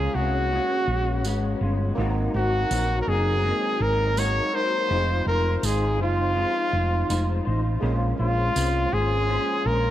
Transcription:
0.00 0.14 F3 medium
0.00 0.15 G#3 medium
0.00 1.55 G#3 medium
0.00 1.56 A#3 medium
0.00 0.14 C#4 medium
0.00 1.57 C#4 medium
0.00 0.15 F4 medium
0.00 0.17 G#4 medium
0.00 1.58 F5 medium
0.15 0.58 C2 medium
0.15 0.51 G#3 soft
0.15 0.52 C#4 soft
0.15 1.61 F#4 medium
0.51 0.88 A#2 medium
0.51 0.88 G#3 medium
0.51 0.88 C#4 medium
0.87 1.24 A#1 medium
0.87 1.24 G#3 soft
0.87 1.25 C#4 soft
1.24 1.53 G#1 medium
1.24 1.61 G#3 medium
1.24 1.61 C#4 medium
1.24 tambourine medium
1.61 1.90 G1 medium
1.61 1.98 G#3 soft
1.61 1.98 C#4 medium
1.61 1.97 F4 medium
1.95 2.27 G#1 loud
1.95 2.34 G#2 medium
1.95 2.34 D#3 medium
1.95 2.34 F#3 medium
1.95 4.12 A#3 medium
1.95 4.13 C4 medium
1.95 2.34 C4 medium
1.95 4.13 D#4 medium
1.99 2.33 D#4 loud
1.99 4.14 F#4 medium
1.99 2.32 A#4 medium
2.34 2.63 G#1 medium
2.34 2.69 F#3 soft
2.34 2.70 C4 soft
2.34 2.70 D#4 soft
2.34 2.97 F#4 medium
2.34 2.70 A#4 medium
2.70 3.00 A#1 medium
2.70 3.07 F#3 medium
2.70 3.07 C4 medium
2.70 3.07 D#4 medium
2.70 3.06 A#4 medium
2.70 tambourine medium
3.01 3.10 A#4 medium
3.07 3.51 F#1 medium
3.07 3.43 F#3 soft
3.07 3.44 C4 soft
3.07 3.44 D#4 medium
3.07 3.84 G#4 loud
3.07 3.43 A#4 medium
3.43 3.80 G#2 medium
3.43 3.80 D#3 medium
3.43 3.80 F#3 medium
3.43 3.80 C4 medium
3.43 3.79 D#4 medium
3.43 3.78 A#4 medium
3.79 4.39 G#1 loud
3.79 4.15 F#3 soft
3.79 4.17 C4 soft
3.79 4.16 D#4 soft
3.79 4.16 A#4 medium
3.79 4.20 A#4 medium
4.16 4.53 F#3 medium
4.16 4.87 G#3 soft
4.16 4.89 A#3 soft
4.16 4.90 D#4 soft
4.16 4.52 D#4 medium
4.16 4.91 F#4 soft
4.16 4.52 A#4 medium
4.16 4.57 C#5 loud
4.16 tambourine medium
4.53 4.90 F#3 soft
4.53 4.90 C4 soft
4.53 4.89 D#4 soft
4.53 4.90 A#4 soft
4.53 5.27 C5 loud
4.88 5.20 F1 medium
4.88 5.26 F3 medium
4.88 7.78 G#3 medium
4.88 5.27 G#3 medium
4.88 7.79 C4 medium
4.88 5.27 D#4 medium
4.88 7.79 D#4 medium
4.88 5.26 F4 medium
4.88 5.25 C5 medium
4.93 7.80 F4 medium
5.26 5.56 F1 medium
5.26 5.62 D#4 soft
5.26 5.63 F4 soft
5.26 5.58 A#4 medium
5.26 5.63 C5 medium
5.58 5.67 A#4 medium
5.63 6.00 G#1 medium
5.63 6.00 G#3 medium
5.63 6.00 D#4 medium
5.63 5.99 F4 medium
5.63 6.01 G#4 medium
5.63 5.98 C5 medium
5.63 tambourine medium
5.99 6.44 F#1 medium
5.99 6.35 D#4 soft
5.99 6.36 F4 soft
5.99 7.43 F4 medium
5.99 6.36 C5 medium
6.35 6.72 F3 medium
6.35 6.73 G#3 medium
6.35 6.73 D#4 medium
6.35 6.72 F4 medium
6.35 6.71 C5 medium
6.72 7.02 F1 medium
6.72 7.08 D#4 soft
6.72 7.09 F4 soft
6.72 7.09 C5 medium
7.09 7.39 F1 medium
7.09 7.46 G#3 medium
7.09 7.46 D#4 medium
7.09 7.45 F4 medium
7.09 7.44 C5 medium
7.09 tambourine medium
7.45 7.76 A1 medium
7.45 7.82 D#4 soft
7.45 7.82 F4 soft
7.45 7.82 C5 medium
7.80 8.12 A#1 medium
7.80 8.19 A#2 medium
7.80 8.19 F3 medium
7.80 9.90 G#3 medium
7.80 8.19 G#3 medium
7.80 9.90 A#3 medium
7.80 8.19 C#4 medium
7.80 9.90 C#4 medium
7.80 8.18 F4 medium
7.80 8.18 C5 medium
7.85 9.90 F4 medium
8.19 8.49 A#1 medium
8.19 8.54 G#3 soft
8.19 8.55 C#4 soft
8.19 8.55 F4 soft
8.19 8.95 F4 medium
8.19 8.56 C5 medium
8.55 8.85 C2 medium
8.55 8.92 G#3 medium
8.55 8.92 C#4 medium
8.55 8.91 F4 medium
8.55 8.90 C5 medium
8.55 tambourine medium
8.91 9.37 G#1 medium
8.91 9.28 G#3 soft
8.91 9.28 C#4 soft
8.91 9.28 F4 soft
8.91 9.68 G#4 loud
8.91 9.28 C5 medium
9.29 9.65 A#2 medium
9.29 9.65 F3 medium
9.29 9.66 G#3 medium
9.29 9.65 C#4 medium
9.29 9.64 F4 medium
9.29 9.63 C5 medium
9.64 9.90 A#1 loud
9.64 9.90 G#3 soft
9.64 9.90 C#4 soft
9.64 9.90 F4 soft
9.64 9.90 A#4 medium
9.64 9.90 C5 soft

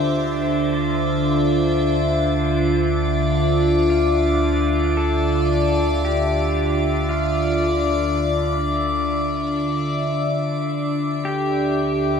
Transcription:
0.00 10.16 D2 medium
0.00 12.20 D3 medium
0.00 12.20 D4 medium
0.00 10.22 F4 medium
0.00 0.77 G4 medium
0.00 4.19 C5 medium
0.00 12.20 E5 medium
0.00 12.20 D6 medium
0.73 3.33 F4 medium
3.89 4.98 F4 medium
3.89 12.20 D5 medium
4.97 6.04 A4 medium
6.05 7.11 G4 medium
7.09 9.66 F4 medium
10.23 12.20 D2 medium
11.09 12.20 G4 medium
11.25 12.20 G4 medium
11.81 12.20 B4 medium

